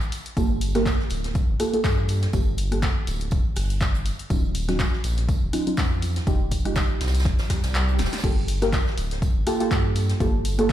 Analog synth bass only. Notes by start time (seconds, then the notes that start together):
0.37 G1
1.11 D1
1.49 G1
1.84 G2
2.34 G1
3.07 D1
3.32 F1
3.56 G1
4.30 D#1
5.04 A#1
5.42 D#1
5.78 F2
6.27 F1
7.01 C2
7.25 D#1
7.50 F2
7.64 C2
7.99 D#1
8.24 G1
8.98 D1
9.36 G1
9.71 G2
10.20 G1